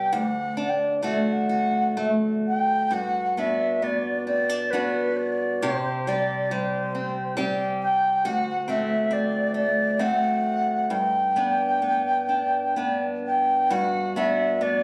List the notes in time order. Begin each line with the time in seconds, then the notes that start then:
Already playing: C3 G3 B3 G4 G5
0.12 D2 F#5
0.57 D4
0.69 G5
1.02 A3 D4 F#4
1.29 E5
1.33 F#5
1.49 F#4
1.97 A3
2.48 G5
2.91 G2 F#4 F#5
3.37 B3 D4 F#4 E5
3.82 B3 D5
4.27 C4 D5
4.49 D4
4.71 B3 D4 F#4 B4
5.17 D5
5.61 C3 G4 C5
6.07 G3 C4 G4 D5
6.51 G3 C5
6.95 C4
7.37 G3 C4 G4
7.83 G5
8.25 D2 F#4 F#5
8.60 F#5
8.68 A3 C4 F#4 E5
9.11 C4 D5
9.54 A3 D5
9.99 A3 C4 F#4 F#5
10.90 G2 G5
11.36 B3 D4
11.82 B3
12.29 D4
12.76 B3 D4
13.26 G5
13.70 G2 F#4 F#5
14.16 B3 D4 F#4 E5
14.61 B3 D5